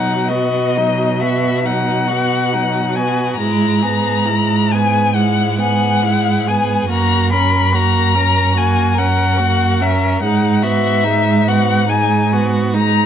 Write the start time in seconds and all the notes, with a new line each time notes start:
Already playing: B2 F#3 D#4 F#5
0.28 B3 F#4 D#5
0.77 F#3 D#4
1.19 B3 F#4 E5
1.64 F#3 D#4 F#5
2.07 B3 F#4
2.53 F#3 D#4
2.95 B3 F#4 G#5
3.38 G#2 G#3 E4 A#5
3.82 B3 G#4
4.26 G#3 E4
4.71 B3 G#4 G#5
5.15 G#3 E4 F#5
5.57 B3 G#4 F#5
6.03 G#3 E4
6.47 B3 G#4 G#5
6.89 F#2 A#3 F#4 A#5
7.30 C#4 A#4 B5
7.73 A#3 F#4 A#5
8.15 C#4 A#4
8.55 A#3 F#4 G#5
8.95 C#4 A#4 F#5
9.37 A#3 F#4
9.81 C#4 A#4 E5
10.21 G#2 G#3 D#4 F#5
10.62 B3 F#4 E5
11.04 G#3 D#4
11.48 B3 F#4 F#5
11.88 G#3 D#4 G#5
12.33 B3 F#4
12.74 G#3 D#4 A#5